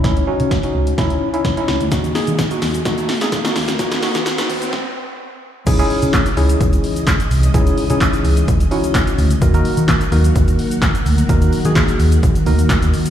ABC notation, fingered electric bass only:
X:1
M:4/4
L:1/16
Q:1/4=128
K:C#dor
V:1 name="Fingered electric bass" clef=bass
C,,2 z C,2 z C,,2 C,,2 z2 C, z C,, =D,, | D,,2 z D,2 z D,,2 D,,2 z2 D, z D,, =D,, | D,,2 z D,2 z D,,2 z8 | C,,2 z C,2 z C,,2 C,,2 z4 ^B,,,2 |
C,,2 z C,2 z C,,2 C,,2 z4 =D,,2 | D,,2 z D,2 z D,,2 D,,2 z4 =D,,2 | D,,2 z D,2 z D,,2 D,2 D,,2 z D,, D,2 |]